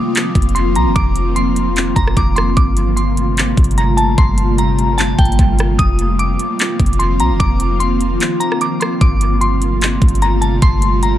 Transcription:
Already playing: ambient pad D#3 F3 A#3 C4 F4, synth bell D6
0.15 clap, closed hi-hat
0.35 808-style bass F1, kick, closed hi-hat
0.42 closed hi-hat
0.49 closed hi-hat
0.55 synth bell C6, closed hi-hat
0.75 808-style bass C2, synth bell A#5, closed hi-hat
0.86 808-style bass F1
0.96 808-style bass F1, synth bell D6, kick, closed hi-hat
1.16 closed hi-hat
1.36 synth bell C6, closed hi-hat
1.56 closed hi-hat
1.76 clap, closed hi-hat
1.96 808-style bass F1, synth bell A#5, kick, closed hi-hat
2.07 cross-stick
2.17 808-style bass F1, synth bell D6, kick, closed hi-hat
2.36 synth bell C6, cross-stick, closed hi-hat
2.57 808-style bass G1, ambient pad C3 G3 A3, synth bell D6, kick, closed hi-hat
2.77 closed hi-hat
2.96 synth bell C6, closed hi-hat
3.17 closed hi-hat
3.37 clap, closed hi-hat
3.57 808-style bass G1, kick, closed hi-hat
3.64 closed hi-hat
3.71 closed hi-hat
3.78 synth bell A#5, closed hi-hat
3.97 synth bell A5, closed hi-hat
4.18 808-style bass G1, synth bell C6, kick, closed hi-hat
4.38 closed hi-hat
4.58 synth bell A#5, closed hi-hat
4.79 closed hi-hat
4.98 synth bell A5, clap, closed hi-hat
5.19 808-style bass G1, synth bell G5, kick, closed hi-hat
5.25 closed hi-hat
5.32 closed hi-hat
5.39 808-style bass G1, kick, closed hi-hat
5.59 cross-stick, closed hi-hat
5.79 808-style bass F1, ambient pad D#3 F3 A#3 C4 F4, synth bell D#6, kick, closed hi-hat
5.99 closed hi-hat
6.19 synth bell D6, closed hi-hat
6.39 closed hi-hat
6.59 clap, closed hi-hat
6.80 808-style bass F1, kick, closed hi-hat
6.86 closed hi-hat
6.93 closed hi-hat
6.99 synth bell C6, closed hi-hat
7.20 808-style bass C2, synth bell A#5, closed hi-hat
7.30 808-style bass F1
7.40 808-style bass F1, synth bell D6, kick, closed hi-hat
7.60 closed hi-hat
7.80 synth bell C6, closed hi-hat
8.01 closed hi-hat
8.20 clap, closed hi-hat
8.40 synth bell A#5, closed hi-hat
8.52 cross-stick
8.61 synth bell D6, closed hi-hat
8.80 synth bell C6, cross-stick, closed hi-hat
9.01 808-style bass G1, ambient pad C3 G3 A3 A#3 F4, synth bell D6, kick, closed hi-hat
9.21 closed hi-hat
9.41 synth bell C6, closed hi-hat
9.62 closed hi-hat
9.81 clap, closed hi-hat
10.02 808-style bass G1, kick, closed hi-hat
10.08 closed hi-hat
10.15 closed hi-hat
10.22 synth bell A#5, closed hi-hat
10.41 synth bell A5, closed hi-hat
10.62 808-style bass G1, synth bell C6, kick, closed hi-hat
10.82 closed hi-hat
11.03 synth bell A#5, closed hi-hat

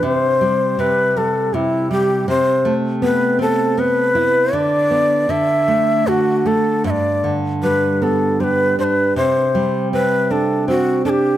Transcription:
0.03 nylon-string guitar C3, shakuhachi C5
0.41 nylon-string guitar G3
0.79 nylon-string guitar C3, shakuhachi B4
1.17 nylon-string guitar G3, shakuhachi A4
1.54 nylon-string guitar C3, shakuhachi E4
1.91 nylon-string guitar G3, shakuhachi G4
2.28 nylon-string guitar C3, shakuhachi C5
2.65 nylon-string guitar A3
3.02 nylon-string guitar B3, shakuhachi B4
3.39 nylon-string guitar C4, shakuhachi A4
3.77 nylon-string guitar B3, shakuhachi B4
4.15 nylon-string guitar E4
4.53 nylon-string guitar D3, shakuhachi D5
4.91 nylon-string guitar B3
5.29 nylon-string guitar D3, shakuhachi E5
5.68 nylon-string guitar A3
6.07 nylon-string guitar D3, shakuhachi F#4
6.46 nylon-string guitar A3, shakuhachi A4
6.84 nylon-string guitar G2, shakuhachi E5
6.90 shakuhachi D5
7.24 nylon-string guitar D3
7.63 nylon-string guitar G3, shakuhachi B4
8.02 nylon-string guitar B3, shakuhachi A4
8.40 nylon-string guitar G3, shakuhachi B4 C5
8.79 nylon-string guitar D4, shakuhachi C5
8.84 shakuhachi B4
9.16 nylon-string guitar C3, shakuhachi C5
9.55 nylon-string guitar G3
9.93 nylon-string guitar C4, shakuhachi B4
10.31 nylon-string guitar D4, shakuhachi A4
10.68 nylon-string guitar C4, shakuhachi F#4
11.05 nylon-string guitar D4, shakuhachi A4
11.09 shakuhachi G4

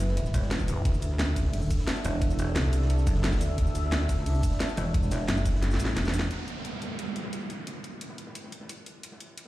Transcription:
Already playing: wobble bass F#1, analog synth pad E4 B4 E5
0.00 open hi-hat, ride, shaker
0.09 snare
0.17 closed hi-hat, ride
0.26 snare, shaker
0.34 wobble bass E1, kick, closed hi-hat, ride, shaker
0.43 snare
0.51 snare, closed hi-hat, ride
0.60 kick, shaker
0.68 open hi-hat, ride, shaker
0.85 wobble bass D2, analog synth pad D4 A4 E5, kick, closed hi-hat, ride
0.94 snare, shaker
1.02 closed hi-hat, ride, shaker
1.19 snare, closed hi-hat, ride
1.28 snare
1.36 kick, open hi-hat, ride, shaker
1.45 snare
1.53 closed hi-hat, open hi-hat
1.62 shaker
1.70 kick, closed hi-hat, ride, shaker
1.79 snare
1.87 snare, closed hi-hat, ride
1.96 shaker
2.05 wobble bass E1, open hi-hat, ride, shaker
2.21 kick, closed hi-hat, ride
2.30 snare, shaker
2.39 closed hi-hat, ride, shaker
2.55 wobble bass C2, snare, closed hi-hat, ride
2.65 snare
2.73 open hi-hat, ride, shaker
2.82 snare
2.90 closed hi-hat, ride
2.98 snare, shaker
3.06 wobble bass F#1, kick, closed hi-hat, ride, shaker
3.15 snare
3.24 snare, closed hi-hat, ride
3.32 kick, snare, ride, shaker
3.36 snare, ride
3.40 wobble bass D2, open hi-hat, ride, shaker
3.58 wobble bass D2, kick, closed hi-hat, ride
3.67 snare, shaker
3.75 closed hi-hat, ride, shaker
3.92 snare, closed hi-hat, ride
4.01 snare
4.09 kick, open hi-hat, ride, shaker
4.17 wobble bass C#2, snare
4.26 closed hi-hat, open hi-hat
4.35 shaker
4.43 kick, closed hi-hat, ride, shaker
4.51 snare
4.60 snare, closed hi-hat, ride
4.69 shaker
4.77 wobble bass E1, open hi-hat, ride, shaker
4.94 kick, closed hi-hat, ride
5.03 snare, shaker
5.11 snare, closed hi-hat, ride, shaker
5.21 snare
5.28 wobble bass F#1, snare, closed hi-hat, ride
5.37 snare, shaker
5.45 kick, open hi-hat, ride, shaker
5.55 snare
5.62 snare, closed hi-hat, ride
5.71 snare, shaker
5.74 snare
5.79 wobble bass A1, closed hi-hat, ride, shaker
5.85 snare
5.89 snare
5.96 wobble bass E1, snare, closed hi-hat, ride
6.05 snare, ride, shaker
6.13 snare, open hi-hat, ride, shaker
6.19 snare, ride
6.31 analog synth pad E4 B4 F#5, closed hi-hat, ride, downlifter
6.39 snare
6.48 closed hi-hat, ride
6.65 closed hi-hat, ride
6.74 snare
6.82 open hi-hat, ride
6.90 snare
6.99 closed hi-hat, open hi-hat
7.15 closed hi-hat, ride
7.24 snare
7.33 closed hi-hat, ride
7.50 open hi-hat, ride
7.67 closed hi-hat, ride
7.76 snare
7.84 closed hi-hat, ride
8.01 closed hi-hat, ride
8.09 snare
8.18 open hi-hat, ride
8.27 snare
8.35 closed hi-hat, ride
8.44 snare
8.52 closed hi-hat, ride
8.61 snare
8.69 closed hi-hat, ride
8.86 open hi-hat, ride
9.03 analog synth pad G5, closed hi-hat, ride
9.12 snare
9.20 closed hi-hat, ride
9.38 closed hi-hat, ride

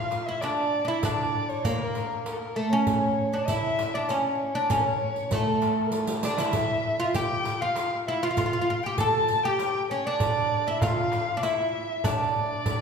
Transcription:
Already playing: oud F4, violin F5
0.11 riq, darbuka tek
0.27 oud E4, violin E5
0.41 oud D4, violin D5, riq, darbuka tek
0.85 oud D4 E4, violin E5
1.03 oud D4, violin D5, riq, darbuka dum
1.49 violin C#5, riq
1.65 oud A#3, violin A#4, riq, darbuka dum
1.95 riq, darbuka tek
2.26 violin A#4, riq, darbuka tek
2.32 violin A4
2.39 violin A#4
2.55 oud A3, violin A4
2.70 oud C#4, violin C#5
2.87 riq, darbuka dum
3.33 oud D4, riq
3.47 oud E4, violin E5, riq, darbuka dum
3.79 riq, darbuka tek
3.94 oud D4, violin D5
4.09 oud C#4, violin C#5, riq, darbuka tek
4.55 oud D4, violin D5
4.70 oud C#4, violin C#5, riq, darbuka dum
4.78 violin A#4
4.84 violin C#5
5.16 riq, darbuka ka
5.31 oud A3, violin A4, riq, darbuka dum
5.62 riq, darbuka tek
5.86 violin A#4
5.92 violin A4, riq, darbuka tek
6.00 darbuka ka
6.07 violin G4, riq, darbuka tek
6.15 violin A4, darbuka ka
6.23 oud D4, violin D5, riq, darbuka tek
6.30 darbuka ka
6.38 oud E4, violin E5, riq, darbuka tek
6.46 darbuka ka
6.53 riq, darbuka dum
6.99 oud F4, riq
7.14 oud G4, violin G5, riq, darbuka dum
7.45 riq, darbuka tek
7.61 oud F4, violin F5
7.76 riq, darbuka tek
8.07 oud E4, violin E5
8.22 oud F4, violin F5
8.31 oud F4
8.37 oud F4, riq, darbuka dum
8.46 oud F4
8.53 oud F4
8.62 oud F4
8.70 oud F4
8.83 oud G4, violin G5, riq
8.98 oud A4, violin A5, riq, darbuka dum
9.28 riq
9.43 oud G4, violin G5
9.59 riq, darbuka tek
9.90 oud C#4, violin C#5
10.06 oud D4, violin D5
10.20 riq, darbuka dum
10.67 oud E4, violin E5, riq
10.82 oud F4, violin F5, riq, darbuka dum
11.12 riq, darbuka tek
11.37 oud D4
11.43 oud E4, violin E5, riq, darbuka tek
12.04 oud D4, violin D5, riq, darbuka dum
12.13 violin C#5
12.19 violin D5
12.35 darbuka ka
12.66 riq, darbuka dum

